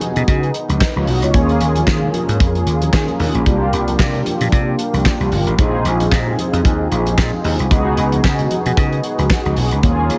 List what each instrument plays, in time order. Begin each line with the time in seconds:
Already playing: analog polysynth B3 D#4 F#4 G#4
0.01 closed hi-hat, high conga
0.16 slap bass B2, closed hi-hat, high conga
0.28 slap bass C#3, kick, closed hi-hat
0.43 closed hi-hat
0.54 closed hi-hat
0.69 slap bass C#2, closed hi-hat, high conga
0.81 kick, snare, clap
0.96 slap bass C#2, analog polysynth F4 C#5, high conga
1.07 slap bass B1, analog polysynth F#4 D#5, open hi-hat, muted conga, low conga
1.22 slap bass C#2, analog polysynth F4 C#5, closed hi-hat
1.33 slap bass D#2, analog polysynth A#3 C#4 F4 G#4, kick, closed hi-hat, muted conga, low conga
1.49 closed hi-hat
1.61 slap bass D#2, closed hi-hat, muted conga
1.75 closed hi-hat, high conga
1.87 slap bass D#3, kick, snare, clap
2.01 low conga
2.14 closed hi-hat, muted conga, high conga
2.28 slap bass G#2, closed hi-hat, high conga
2.40 slap bass F2, kick, closed hi-hat, muted conga
2.55 closed hi-hat
2.66 slap bass D#2, closed hi-hat
2.81 closed hi-hat, high conga
2.93 slap bass D#3, kick, snare, clap
3.08 closed hi-hat, high conga
3.19 slap bass D#2, open hi-hat, muted conga, low conga
3.35 slap bass A#1, closed hi-hat
3.46 slap bass C2, analog polysynth A#3 D4 F4 G4, kick, closed hi-hat, muted conga, low conga
3.73 slap bass C2, closed hi-hat
3.88 closed hi-hat, high conga
3.99 slap bass C3, kick, snare, clap, muted conga
4.13 closed hi-hat, low conga
4.26 closed hi-hat, muted conga, high conga
4.41 slap bass A#2, closed hi-hat, high conga
4.52 slap bass C3, kick, closed hi-hat, muted conga
4.79 closed hi-hat, muted conga
4.93 slap bass C2, closed hi-hat, high conga
5.05 kick, snare, clap
5.20 slap bass C2, closed hi-hat, high conga
5.32 slap bass G1, open hi-hat, low conga
5.47 slap bass A1, closed hi-hat
5.58 slap bass A#1, analog polysynth C4 D#4 F4 G#4, kick, closed hi-hat, low conga
5.85 slap bass A#1, closed hi-hat, muted conga
6.00 closed hi-hat, high conga
6.12 slap bass A#2, kick, snare, clap
6.26 low conga
6.38 closed hi-hat, high conga
6.53 slap bass F2, closed hi-hat, high conga
6.65 slap bass D#2, kick, closed hi-hat, muted conga
6.91 slap bass A#1, closed hi-hat, muted conga
7.06 closed hi-hat, high conga
7.18 slap bass A#2, kick, snare, clap
7.33 high conga
7.44 slap bass D#2, open hi-hat, muted conga, low conga
7.59 slap bass C2, closed hi-hat
7.71 slap bass C#2, analog polysynth B3 D#4 F#4 G#4, kick, closed hi-hat, muted conga, low conga
7.97 slap bass C#2, closed hi-hat
8.12 closed hi-hat, high conga
8.24 slap bass C#3, kick, snare, clap, muted conga
8.38 closed hi-hat, low conga
8.51 closed hi-hat, muted conga, high conga
8.66 slap bass B2, closed hi-hat, high conga
8.77 slap bass C#3, kick, closed hi-hat, muted conga
8.92 closed hi-hat
9.04 closed hi-hat
9.18 slap bass C#2, closed hi-hat, high conga
9.30 kick, snare, clap
9.45 slap bass C#2, closed hi-hat, high conga
9.56 slap bass B1, open hi-hat, muted conga, low conga
9.71 slap bass C#2, closed hi-hat
9.83 slap bass D#2, analog polysynth A#3 C#4 F4 G#4, kick, closed hi-hat, muted conga, low conga
10.10 slap bass D#2, closed hi-hat